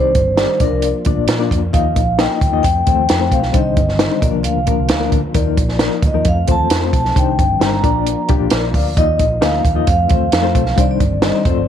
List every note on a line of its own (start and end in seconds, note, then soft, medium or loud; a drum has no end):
0.00 0.12 C2 medium
0.00 0.59 D#3 medium
0.00 0.59 G3 medium
0.00 0.19 C4 medium
0.00 0.59 C4 medium
0.00 1.71 D4 medium
0.00 0.19 D#4 medium
0.00 0.19 G4 medium
0.00 0.58 C5 medium
0.00 0.20 D5 medium
0.15 0.45 G1 medium
0.15 kick medium
0.15 closed hi-hat medium
0.36 0.57 C4 medium
0.36 0.57 D#4 medium
0.36 0.57 G4 medium
0.36 0.58 D5 medium
0.36 snare loud
0.36 closed hi-hat medium
0.60 0.70 A#1 medium
0.60 3.51 F3 medium
0.60 2.62 A#3 medium
0.60 0.97 A#3 medium
0.60 0.97 D4 medium
0.60 3.51 F4 medium
0.60 0.97 F4 medium
0.60 0.85 A#4 medium
0.60 0.97 D5 medium
0.60 kick loud
0.60 closed hi-hat medium
0.72 0.91 C2 medium
0.82 1.47 D5 medium
0.82 closed hi-hat medium
1.05 1.16 D2 medium
1.05 1.26 A#3 medium
1.05 1.26 D4 medium
1.05 1.26 F4 medium
1.05 1.26 D5 medium
1.05 kick medium
1.05 closed hi-hat medium
1.16 1.26 A#1 medium
1.28 1.48 A#2 loud
1.28 snare loud
1.28 closed hi-hat loud
1.39 1.59 A#3 medium
1.39 1.59 D4 medium
1.39 1.59 F4 medium
1.39 1.60 D5 medium
1.51 1.71 F2 medium
1.51 kick medium
1.51 closed hi-hat medium
1.73 1.93 D#2 loud
1.73 1.99 A#3 medium
1.73 2.00 D#4 medium
1.73 2.63 D#4 medium
1.73 2.00 F4 medium
1.73 2.00 D#5 medium
1.73 2.20 F5 loud
1.73 kick loud
1.73 closed hi-hat medium
1.96 2.26 A#1 medium
1.96 kick medium
1.96 closed hi-hat medium
2.18 2.38 A#3 medium
2.18 2.38 D#4 medium
2.18 2.38 F4 medium
2.18 2.39 D#5 medium
2.18 2.62 G5 medium
2.18 snare loud
2.18 closed hi-hat medium
2.41 2.51 D2 medium
2.41 kick medium
2.41 closed hi-hat medium
2.52 2.62 D#2 medium
2.52 2.64 A#3 medium
2.52 2.64 D#4 medium
2.52 2.64 F4 medium
2.52 2.64 D#5 medium
2.63 2.84 F2 medium
2.63 3.53 A3 medium
2.63 4.20 C4 medium
2.63 3.33 G5 loud
2.63 kick medium
2.63 closed hi-hat medium
2.86 2.97 D#2 medium
2.86 3.06 A3 medium
2.86 3.06 C4 medium
2.86 3.07 F4 medium
2.86 3.07 C5 medium
2.86 kick medium
2.86 closed hi-hat medium
2.99 3.08 D#2 medium
3.09 3.29 F2 medium
3.09 snare loud
3.09 closed hi-hat medium
3.20 3.40 A3 medium
3.20 3.40 C4 medium
3.20 3.40 F4 medium
3.20 3.40 C5 medium
3.31 3.51 B1 medium
3.31 3.55 F5 medium
3.31 kick medium
3.31 closed hi-hat medium
3.43 snare soft
3.52 3.74 C2 loud
3.52 5.34 D3 medium
3.52 4.22 D#3 medium
3.52 3.80 G3 medium
3.52 4.22 G3 medium
3.52 3.80 D4 medium
3.52 3.80 D#4 medium
3.52 3.80 C5 medium
3.52 4.24 D#5 medium
3.52 kick loud
3.52 closed hi-hat medium
3.77 4.06 G1 medium
3.77 kick medium
3.77 closed hi-hat medium
3.89 snare soft
3.99 4.19 G3 medium
3.99 4.19 D4 medium
3.99 4.19 D#4 medium
3.99 4.20 C5 medium
3.99 snare loud
3.99 closed hi-hat medium
4.21 4.32 A#1 loud
4.21 4.58 F3 medium
4.21 5.34 F3 medium
4.21 4.58 A#3 medium
4.21 6.24 A#3 medium
4.21 4.27 C#4 soft
4.21 5.34 F4 medium
4.21 4.58 A#4 medium
4.21 4.32 D5 medium
4.21 kick loud
4.21 closed hi-hat medium
4.26 4.60 D4 medium
4.34 4.44 C2 medium
4.43 4.55 D2 medium
4.43 5.08 F5 medium
4.43 closed hi-hat medium
4.56 4.66 C2 medium
4.66 4.86 F3 medium
4.66 4.87 A#3 medium
4.66 4.87 D4 medium
4.66 4.87 A#4 medium
4.66 kick medium
4.66 closed hi-hat medium
4.79 4.89 C2 medium
4.89 5.10 D2 medium
4.89 snare loud
4.89 closed hi-hat medium
5.00 5.20 F3 medium
5.00 5.21 A#3 medium
5.00 5.21 D4 medium
5.00 5.21 A#4 medium
5.12 5.22 D2 medium
5.12 kick medium
5.12 closed hi-hat medium
5.34 5.54 D#2 loud
5.34 5.61 F3 medium
5.34 6.24 F3 medium
5.34 5.61 A#3 medium
5.34 5.62 D#4 medium
5.34 6.25 D#4 medium
5.34 7.14 F4 medium
5.34 5.61 A#4 medium
5.34 5.69 D5 medium
5.34 kick loud
5.34 closed hi-hat medium
5.57 5.87 A#1 medium
5.57 kick medium
5.57 closed hi-hat medium
5.69 6.05 D5 medium
5.69 snare soft
5.79 6.00 F3 medium
5.79 6.01 A#3 medium
5.79 6.01 D#4 medium
5.79 6.01 A#4 medium
5.79 snare loud
5.79 closed hi-hat medium
6.02 6.13 D2 medium
6.02 6.28 D#5 medium
6.02 kick medium
6.02 closed hi-hat medium
6.14 6.24 D#2 medium
6.14 6.26 F3 medium
6.14 6.26 A#3 medium
6.14 6.26 D#4 medium
6.14 6.26 A#4 medium
6.25 6.45 F2 loud
6.25 7.15 F3 medium
6.25 7.15 A3 medium
6.25 7.82 C4 medium
6.25 6.50 F5 medium
6.25 kick medium
6.25 closed hi-hat medium
6.47 6.58 D#2 medium
6.47 6.68 A3 medium
6.47 6.67 C4 medium
6.47 6.68 F4 medium
6.47 6.68 C5 medium
6.47 kick medium
6.47 closed hi-hat medium
6.51 6.95 A5 medium
6.59 6.69 D#2 medium
6.70 6.90 F2 medium
6.70 snare loud
6.70 closed hi-hat medium
6.80 7.01 A3 medium
6.80 7.01 C4 medium
6.80 7.01 F4 medium
6.80 7.01 C5 medium
6.93 7.13 B1 loud
6.93 7.18 A5 medium
6.93 kick medium
6.93 closed hi-hat medium
7.05 snare soft
7.15 7.36 C2 loud
7.15 7.84 D#3 medium
7.15 7.42 G3 medium
7.15 7.84 G3 medium
7.15 7.42 D4 medium
7.15 8.95 D4 medium
7.15 7.42 D#4 medium
7.15 7.42 C5 medium
7.15 7.64 G5 medium
7.15 kick loud
7.15 closed hi-hat medium
7.39 7.59 G1 medium
7.39 kick medium
7.39 closed hi-hat medium
7.59 7.80 G1 medium
7.59 7.80 G3 medium
7.59 7.80 D4 medium
7.59 7.81 D#4 medium
7.59 7.81 C5 medium
7.59 snare loud
7.59 closed hi-hat medium
7.64 8.27 A#5 medium
7.83 8.13 A#1 medium
7.83 9.86 F3 medium
7.83 8.19 A#3 medium
7.83 9.86 A#3 medium
7.83 8.20 D4 medium
7.83 8.20 F4 medium
7.83 10.75 F4 medium
7.83 8.20 D5 medium
7.83 kick medium
7.83 closed hi-hat medium
8.07 closed hi-hat medium
8.29 8.39 C2 medium
8.29 8.49 A#3 medium
8.29 8.49 D4 medium
8.29 8.49 F4 medium
8.29 8.49 G4 medium
8.29 kick medium
8.29 closed hi-hat medium
8.40 8.50 A#1 medium
8.50 8.74 A#1 medium
8.50 8.73 A#4 medium
8.50 8.73 D5 medium
8.50 snare loud
8.50 closed hi-hat loud
8.74 8.94 D2 medium
8.74 9.18 D5 medium
8.74 9.17 F5 medium
8.74 kick medium
8.74 open hi-hat medium
8.97 9.17 D#2 loud
8.97 9.24 A#3 medium
8.97 9.24 D#4 medium
8.97 9.87 D#4 medium
8.97 9.24 F4 medium
8.97 9.44 D#5 loud
8.97 9.24 D#5 medium
8.97 kick loud
8.97 closed hi-hat medium
9.19 9.39 A#1 medium
9.19 kick medium
9.19 closed hi-hat medium
9.41 9.62 D2 medium
9.41 9.61 A#3 medium
9.41 9.61 D#4 medium
9.41 9.61 F4 medium
9.41 9.62 D#5 medium
9.41 9.88 F5 loud
9.41 snare loud
9.41 closed hi-hat medium
9.65 9.84 D#2 medium
9.65 kick medium
9.65 closed hi-hat medium
9.75 9.87 A#3 medium
9.75 9.87 D#4 medium
9.75 9.87 F4 medium
9.75 9.87 D#5 medium
9.87 10.07 F2 loud
9.87 10.77 F3 medium
9.87 10.77 A3 medium
9.87 11.68 C4 medium
9.87 10.82 F5 loud
9.87 kick loud
9.87 closed hi-hat medium
10.09 10.20 D#2 medium
10.09 10.29 A3 medium
10.09 10.29 C4 medium
10.09 10.29 F4 medium
10.09 10.29 C5 medium
10.09 kick medium
10.09 closed hi-hat medium
10.21 10.31 D#2 medium
10.32 10.52 F2 medium
10.32 snare loud
10.32 closed hi-hat medium
10.42 10.63 A3 medium
10.42 10.63 C4 medium
10.42 10.63 F4 medium
10.42 10.64 C5 loud
10.55 10.75 B1 loud
10.55 kick medium
10.55 closed hi-hat medium
10.66 snare soft
10.76 10.97 C2 loud
10.76 11.46 D#3 medium
10.76 11.04 G3 medium
10.76 11.46 G3 medium
10.76 11.03 D4 medium
10.76 11.45 D4 medium
10.76 11.03 D#4 medium
10.76 11.04 C5 medium
10.76 kick loud
10.76 closed hi-hat medium
10.80 10.90 D5 loud
10.91 11.25 D5 medium
11.00 11.30 G1 medium
11.00 kick medium
11.00 closed hi-hat medium
11.22 11.42 G3 medium
11.22 11.43 D4 medium
11.22 11.42 D#4 medium
11.22 11.43 C5 medium
11.22 11.36 D#5 medium
11.22 snare loud
11.22 closed hi-hat medium
11.35 11.68 D5 medium
11.45 11.55 F1 medium
11.45 11.68 F3 medium
11.45 11.68 A3 medium
11.45 11.68 C4 medium
11.45 11.68 F4 medium
11.45 11.68 C5 medium
11.45 kick medium
11.45 closed hi-hat medium
11.57 11.68 G1 medium